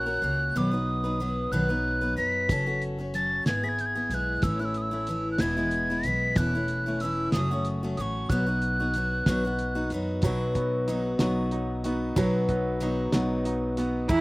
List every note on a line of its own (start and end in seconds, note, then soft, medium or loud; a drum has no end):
0.00 0.20 A#1 medium
0.00 0.59 F#6 medium
0.06 0.22 C#4 soft
0.06 0.22 F#4 soft
0.06 0.23 A#4 soft
0.22 0.54 C#2 medium
0.22 0.55 A#3 medium
0.22 0.56 C#4 soft
0.22 0.56 F#4 medium
0.22 0.56 A#4 medium
0.56 1.49 B1 medium
0.56 0.72 B2 medium
0.56 0.72 D#3 medium
0.56 0.72 F#3 medium
0.56 0.72 B3 medium
0.56 0.72 D#4 medium
0.56 0.70 B4 medium
0.56 0.69 D6 medium
0.69 1.04 B3 soft
0.69 1.03 D#4 soft
0.69 1.03 B4 soft
0.69 1.53 D#6 medium
0.74 1.05 F#3 soft
1.04 1.19 F#3 soft
1.04 1.19 B3 soft
1.04 1.20 D#4 soft
1.04 1.20 B4 soft
1.20 1.52 F#3 medium
1.20 1.52 B3 medium
1.20 1.53 D#4 soft
1.20 1.52 B4 medium
1.51 2.13 B1 medium
1.51 1.69 B2 medium
1.51 1.69 D#3 medium
1.51 1.69 F#3 medium
1.51 1.69 B3 medium
1.51 1.69 D#4 medium
1.51 1.68 B4 medium
1.51 2.17 F#6 medium
1.69 2.02 F#3 soft
1.69 2.02 B3 soft
1.69 2.01 D#4 soft
1.69 2.00 B4 soft
2.01 2.15 F#3 soft
2.01 2.16 B3 soft
2.01 2.17 D#4 soft
2.01 2.17 B4 soft
2.17 2.48 F#2 medium
2.17 2.49 F#3 medium
2.17 2.50 B3 medium
2.17 2.50 D#4 soft
2.17 2.50 B4 medium
2.17 2.83 B6 medium
2.49 3.42 F#1 medium
2.49 2.66 F#3 medium
2.49 2.66 C#4 medium
2.49 2.66 F#4 medium
2.49 2.65 A4 medium
2.49 kick medium
2.49 closed hi-hat medium
2.66 2.99 C#4 soft
2.66 2.98 F#4 soft
2.66 2.97 A4 soft
2.82 closed hi-hat soft
2.99 3.14 C#4 soft
2.99 3.14 F#4 soft
2.99 3.14 A4 soft
3.14 3.46 F#3 medium
3.14 3.47 C#4 medium
3.14 3.47 F#4 soft
3.14 3.47 A4 soft
3.14 3.45 A6 medium
3.14 closed hi-hat soft
3.46 4.07 G#1 medium
3.46 3.63 G#3 medium
3.46 3.63 B3 medium
3.46 3.63 E4 medium
3.46 3.62 G#4 medium
3.46 3.65 G#6 medium
3.46 snare medium
3.46 closed hi-hat medium
3.63 3.96 B3 soft
3.63 3.95 E4 soft
3.63 3.94 G#4 medium
3.63 3.70 B6 medium
3.69 3.82 G#6 medium
3.79 3.87 G6 medium
3.79 closed hi-hat soft
3.86 4.11 G#6 medium
3.95 4.11 B3 soft
3.95 4.11 E4 soft
3.95 4.11 G#4 soft
4.10 4.41 B1 medium
4.10 4.43 G#3 medium
4.10 4.43 B3 medium
4.10 4.44 E4 medium
4.10 4.15 G#6 medium
4.10 closed hi-hat soft
4.14 4.44 G#4 medium
4.14 4.45 F#6 medium
4.42 5.35 A1 medium
4.42 4.59 A2 medium
4.42 4.59 E3 medium
4.42 4.60 A3 medium
4.42 4.60 C#4 medium
4.42 4.58 E4 medium
4.42 4.61 E6 medium
4.42 kick medium
4.42 closed hi-hat medium
4.59 4.92 A3 soft
4.59 4.91 C#4 soft
4.59 4.90 E4 medium
4.59 4.66 F#6 medium
4.65 4.78 E6 medium
4.74 4.83 D#6 medium
4.74 closed hi-hat soft
4.82 5.31 E6 medium
4.91 5.08 A3 soft
4.91 5.08 C#4 soft
4.91 5.07 E4 medium
5.07 5.40 E3 medium
5.07 5.41 A3 medium
5.07 5.41 C#4 medium
5.07 5.41 E4 medium
5.07 closed hi-hat soft
5.32 5.42 F#6 medium
5.38 6.01 E1 medium
5.38 5.57 E2 medium
5.38 5.57 B2 medium
5.38 5.57 E3 medium
5.38 5.57 G#3 medium
5.38 5.56 B3 medium
5.38 6.07 G#6 medium
5.38 snare medium
5.38 closed hi-hat medium
5.43 5.56 E4 medium
5.57 5.90 E3 soft
5.57 5.89 G#3 soft
5.57 5.89 B3 medium
5.57 5.89 E4 medium
5.71 closed hi-hat soft
5.90 6.05 E3 soft
5.90 6.05 G#3 soft
5.90 6.06 B3 soft
5.90 6.05 E4 soft
6.03 6.35 B1 medium
6.03 6.36 E3 soft
6.03 6.38 G#3 medium
6.03 6.38 B3 medium
6.03 6.39 B6 medium
6.03 closed hi-hat soft
6.08 6.37 E4 medium
6.36 7.29 E1 loud
6.36 6.53 E2 medium
6.36 6.53 B2 medium
6.36 6.53 E3 medium
6.36 6.53 A3 medium
6.36 6.53 C#4 medium
6.36 6.54 E4 medium
6.36 7.03 F#6 medium
6.36 kick medium
6.36 closed hi-hat medium
6.55 6.87 E3 soft
6.55 6.86 A3 soft
6.55 6.86 C#4 soft
6.55 6.85 E4 soft
6.68 closed hi-hat soft
6.86 7.01 E3 soft
6.86 7.02 A3 soft
6.86 7.02 C#4 soft
6.86 7.02 E4 soft
7.00 7.34 E3 medium
7.00 7.34 A3 medium
7.00 7.35 C#4 medium
7.00 7.32 E6 medium
7.00 closed hi-hat medium
7.05 7.35 E4 medium
7.32 7.94 F#1 medium
7.32 7.50 F#2 medium
7.32 7.50 C#3 medium
7.32 7.50 F#3 medium
7.32 7.51 A3 medium
7.32 7.51 C#4 medium
7.32 7.68 D#6 medium
7.32 snare medium
7.32 closed hi-hat medium
7.36 7.50 F#4 medium
7.51 7.83 F#3 soft
7.51 7.83 A3 soft
7.51 7.83 C#4 medium
7.51 7.82 F#4 medium
7.65 closed hi-hat soft
7.83 7.98 F#3 soft
7.83 7.99 A3 soft
7.83 7.99 C#4 soft
7.83 7.98 F#4 medium
7.97 8.28 A1 medium
7.97 8.30 F#3 medium
7.97 8.31 A3 medium
7.97 8.31 C#4 medium
7.97 8.02 D#6 medium
7.97 closed hi-hat soft
8.01 8.31 F#4 medium
8.01 8.31 C#6 medium
8.29 9.22 B1 loud
8.29 8.46 B2 medium
8.29 8.47 F#3 medium
8.29 8.47 B3 medium
8.29 8.46 D#4 medium
8.29 8.45 F#4 medium
8.29 9.91 F#6 medium
8.29 kick loud
8.29 closed hi-hat medium
8.47 8.80 B3 soft
8.47 8.79 D#4 soft
8.47 8.78 F#4 medium
8.62 closed hi-hat soft
8.80 8.95 B3 soft
8.80 8.95 D#4 soft
8.80 8.95 F#4 soft
8.94 9.27 F#3 medium
8.94 9.28 B3 medium
8.94 9.28 D#4 medium
8.94 9.28 F#4 medium
8.94 closed hi-hat medium
9.26 9.88 B1 medium
9.26 9.43 B2 medium
9.26 9.44 F#3 medium
9.26 9.44 B3 medium
9.26 9.44 D#4 medium
9.26 9.43 F#4 medium
9.26 kick medium
9.26 snare medium
9.26 closed hi-hat medium
9.45 9.76 B3 medium
9.45 9.75 D#4 medium
9.45 9.74 F#4 medium
9.59 closed hi-hat soft
9.75 9.92 B3 soft
9.75 9.92 D#4 medium
9.75 9.91 F#4 medium
9.90 10.21 F#2 medium
9.90 10.24 F#3 medium
9.90 10.23 B3 medium
9.90 closed hi-hat soft
9.94 10.24 D#4 medium
9.94 10.25 F#4 medium
10.22 11.16 B1 medium
10.22 10.88 B2 medium
10.22 11.19 F#3 medium
10.22 10.87 F#3 medium
10.22 10.89 B3 medium
10.22 10.88 D#4 medium
10.22 kick medium
10.22 closed hi-hat medium
10.26 10.89 F#4 medium
10.55 11.84 B3 medium
10.55 kick medium
10.55 closed hi-hat soft
10.88 11.20 F#3 medium
10.88 11.19 B3 medium
10.88 11.51 D#4 medium
10.88 11.19 D#4 medium
10.88 11.19 F#4 medium
10.88 closed hi-hat medium
11.19 12.12 B1 medium
11.19 11.85 B2 medium
11.19 12.16 F#3 medium
11.19 11.85 F#3 medium
11.19 11.86 B3 medium
11.19 11.84 D#4 medium
11.19 11.83 F#4 medium
11.19 snare medium
11.19 closed hi-hat medium
11.51 12.81 D#4 medium
11.51 closed hi-hat soft
11.84 12.48 B3 medium
11.84 12.16 B3 soft
11.84 12.16 D#4 medium
11.84 12.16 F#4 medium
11.84 closed hi-hat soft
12.16 13.09 B1 medium
12.16 12.81 B2 medium
12.16 12.79 F#3 medium
12.16 13.12 F#3 medium
12.16 12.80 B3 medium
12.16 12.81 D#4 medium
12.16 12.81 F#4 loud
12.16 kick loud
12.16 closed hi-hat medium
12.49 13.77 B3 medium
12.49 kick soft
12.49 closed hi-hat soft
12.80 13.13 F#3 medium
12.80 13.13 B3 medium
12.80 13.12 D#4 medium
12.80 13.44 D#4 medium
12.80 13.12 F#4 medium
12.80 closed hi-hat medium
13.12 14.05 B1 medium
13.12 13.78 B2 medium
13.12 14.16 F#3 medium
13.12 13.78 F#3 medium
13.12 13.78 B3 medium
13.12 13.77 D#4 medium
13.12 13.76 F#4 medium
13.12 snare medium
13.12 closed hi-hat medium
13.45 14.16 D#4 medium
13.45 closed hi-hat medium
13.77 14.16 B3 medium
13.77 14.09 B3 soft
13.77 14.10 D#4 soft
13.77 14.09 F#4 medium
13.77 closed hi-hat medium
14.09 14.21 E2 medium
14.09 14.21 B2 medium
14.09 14.21 E3 medium
14.09 14.21 G#3 medium
14.09 14.21 B3 medium
14.09 14.21 E4 loud
14.09 14.21 G#4 medium
14.09 14.21 B5 medium
14.09 kick loud
14.09 ride medium